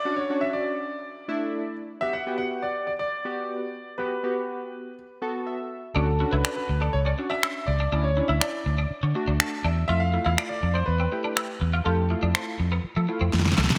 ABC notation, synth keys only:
X:1
M:4/4
L:1/16
Q:1/4=122
K:D
V:1 name="Synth keys"
[CDF] z [CDF]4 z4 [A,DE]2 z4 | [B,FG] z [B,FG]4 z4 [B,FG]2 z4 | [B,FG] z [B,FG]4 z4 [B,FA]2 e4 | [CDF] z [CDF]4 z4 [CDF]2 z4 |
[CDE] z [CDE]4 z4 [A,DF]2 a2 e2 | [A,E=F] z [A,EF]4 z4 [A,EG]2 z4 | [A,EG] z [A,E=F]4 z4 [A,EF]2 z4 |]